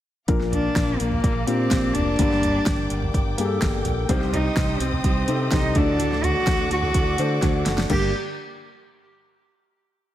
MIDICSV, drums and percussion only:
0, 0, Header, 1, 2, 480
1, 0, Start_track
1, 0, Key_signature, -2, "minor"
1, 0, Tempo, 476153
1, 286, Time_signature, 4, 2, 24, 8
1, 10231, End_track
2, 0, Start_track
2, 0, Title_t, "Drums"
2, 284, Note_on_c, 9, 42, 68
2, 287, Note_on_c, 9, 36, 104
2, 385, Note_off_c, 9, 42, 0
2, 388, Note_off_c, 9, 36, 0
2, 408, Note_on_c, 9, 38, 28
2, 509, Note_off_c, 9, 38, 0
2, 527, Note_on_c, 9, 43, 49
2, 533, Note_on_c, 9, 42, 49
2, 628, Note_off_c, 9, 43, 0
2, 634, Note_off_c, 9, 42, 0
2, 767, Note_on_c, 9, 36, 105
2, 767, Note_on_c, 9, 38, 93
2, 774, Note_on_c, 9, 42, 78
2, 868, Note_off_c, 9, 36, 0
2, 868, Note_off_c, 9, 38, 0
2, 874, Note_off_c, 9, 42, 0
2, 1007, Note_on_c, 9, 42, 67
2, 1108, Note_off_c, 9, 42, 0
2, 1126, Note_on_c, 9, 43, 55
2, 1227, Note_off_c, 9, 43, 0
2, 1247, Note_on_c, 9, 36, 98
2, 1249, Note_on_c, 9, 42, 66
2, 1348, Note_off_c, 9, 36, 0
2, 1350, Note_off_c, 9, 42, 0
2, 1487, Note_on_c, 9, 42, 73
2, 1588, Note_off_c, 9, 42, 0
2, 1725, Note_on_c, 9, 38, 93
2, 1728, Note_on_c, 9, 36, 84
2, 1728, Note_on_c, 9, 42, 82
2, 1825, Note_off_c, 9, 38, 0
2, 1829, Note_off_c, 9, 36, 0
2, 1829, Note_off_c, 9, 42, 0
2, 1963, Note_on_c, 9, 42, 66
2, 1967, Note_on_c, 9, 43, 55
2, 2064, Note_off_c, 9, 42, 0
2, 2068, Note_off_c, 9, 43, 0
2, 2206, Note_on_c, 9, 42, 80
2, 2208, Note_on_c, 9, 36, 95
2, 2307, Note_off_c, 9, 42, 0
2, 2309, Note_off_c, 9, 36, 0
2, 2329, Note_on_c, 9, 38, 28
2, 2430, Note_off_c, 9, 38, 0
2, 2445, Note_on_c, 9, 43, 50
2, 2451, Note_on_c, 9, 42, 50
2, 2546, Note_off_c, 9, 43, 0
2, 2551, Note_off_c, 9, 42, 0
2, 2684, Note_on_c, 9, 38, 94
2, 2686, Note_on_c, 9, 36, 115
2, 2690, Note_on_c, 9, 42, 85
2, 2784, Note_off_c, 9, 38, 0
2, 2786, Note_off_c, 9, 36, 0
2, 2791, Note_off_c, 9, 42, 0
2, 2926, Note_on_c, 9, 42, 66
2, 3027, Note_off_c, 9, 42, 0
2, 3048, Note_on_c, 9, 43, 54
2, 3149, Note_off_c, 9, 43, 0
2, 3167, Note_on_c, 9, 36, 94
2, 3171, Note_on_c, 9, 42, 67
2, 3268, Note_off_c, 9, 36, 0
2, 3271, Note_off_c, 9, 42, 0
2, 3409, Note_on_c, 9, 42, 75
2, 3510, Note_off_c, 9, 42, 0
2, 3646, Note_on_c, 9, 38, 89
2, 3648, Note_on_c, 9, 36, 99
2, 3650, Note_on_c, 9, 42, 75
2, 3747, Note_off_c, 9, 38, 0
2, 3749, Note_off_c, 9, 36, 0
2, 3751, Note_off_c, 9, 42, 0
2, 3881, Note_on_c, 9, 42, 68
2, 3885, Note_on_c, 9, 43, 52
2, 3982, Note_off_c, 9, 42, 0
2, 3986, Note_off_c, 9, 43, 0
2, 4124, Note_on_c, 9, 42, 69
2, 4125, Note_on_c, 9, 36, 97
2, 4225, Note_off_c, 9, 42, 0
2, 4226, Note_off_c, 9, 36, 0
2, 4246, Note_on_c, 9, 38, 28
2, 4347, Note_off_c, 9, 38, 0
2, 4365, Note_on_c, 9, 43, 57
2, 4371, Note_on_c, 9, 42, 58
2, 4466, Note_off_c, 9, 43, 0
2, 4472, Note_off_c, 9, 42, 0
2, 4603, Note_on_c, 9, 36, 117
2, 4603, Note_on_c, 9, 38, 102
2, 4610, Note_on_c, 9, 42, 80
2, 4704, Note_off_c, 9, 36, 0
2, 4704, Note_off_c, 9, 38, 0
2, 4711, Note_off_c, 9, 42, 0
2, 4843, Note_on_c, 9, 42, 67
2, 4944, Note_off_c, 9, 42, 0
2, 4962, Note_on_c, 9, 43, 53
2, 5063, Note_off_c, 9, 43, 0
2, 5082, Note_on_c, 9, 36, 92
2, 5082, Note_on_c, 9, 42, 71
2, 5183, Note_off_c, 9, 36, 0
2, 5183, Note_off_c, 9, 42, 0
2, 5321, Note_on_c, 9, 42, 74
2, 5422, Note_off_c, 9, 42, 0
2, 5560, Note_on_c, 9, 38, 102
2, 5563, Note_on_c, 9, 42, 79
2, 5564, Note_on_c, 9, 36, 98
2, 5661, Note_off_c, 9, 38, 0
2, 5664, Note_off_c, 9, 42, 0
2, 5665, Note_off_c, 9, 36, 0
2, 5797, Note_on_c, 9, 42, 65
2, 5801, Note_on_c, 9, 43, 53
2, 5803, Note_on_c, 9, 36, 86
2, 5898, Note_off_c, 9, 42, 0
2, 5902, Note_off_c, 9, 43, 0
2, 5904, Note_off_c, 9, 36, 0
2, 6045, Note_on_c, 9, 42, 75
2, 6146, Note_off_c, 9, 42, 0
2, 6166, Note_on_c, 9, 38, 27
2, 6267, Note_off_c, 9, 38, 0
2, 6284, Note_on_c, 9, 43, 51
2, 6290, Note_on_c, 9, 42, 61
2, 6385, Note_off_c, 9, 43, 0
2, 6390, Note_off_c, 9, 42, 0
2, 6522, Note_on_c, 9, 36, 119
2, 6522, Note_on_c, 9, 38, 102
2, 6528, Note_on_c, 9, 42, 78
2, 6622, Note_off_c, 9, 38, 0
2, 6623, Note_off_c, 9, 36, 0
2, 6629, Note_off_c, 9, 42, 0
2, 6764, Note_on_c, 9, 42, 71
2, 6865, Note_off_c, 9, 42, 0
2, 6882, Note_on_c, 9, 43, 53
2, 6983, Note_off_c, 9, 43, 0
2, 6999, Note_on_c, 9, 42, 75
2, 7002, Note_on_c, 9, 36, 90
2, 7100, Note_off_c, 9, 42, 0
2, 7103, Note_off_c, 9, 36, 0
2, 7241, Note_on_c, 9, 42, 80
2, 7342, Note_off_c, 9, 42, 0
2, 7482, Note_on_c, 9, 38, 53
2, 7485, Note_on_c, 9, 36, 95
2, 7485, Note_on_c, 9, 42, 87
2, 7582, Note_off_c, 9, 38, 0
2, 7585, Note_off_c, 9, 42, 0
2, 7586, Note_off_c, 9, 36, 0
2, 7718, Note_on_c, 9, 42, 73
2, 7723, Note_on_c, 9, 38, 75
2, 7819, Note_off_c, 9, 42, 0
2, 7824, Note_off_c, 9, 38, 0
2, 7842, Note_on_c, 9, 38, 87
2, 7943, Note_off_c, 9, 38, 0
2, 7960, Note_on_c, 9, 49, 72
2, 7963, Note_on_c, 9, 36, 85
2, 8061, Note_off_c, 9, 49, 0
2, 8064, Note_off_c, 9, 36, 0
2, 10231, End_track
0, 0, End_of_file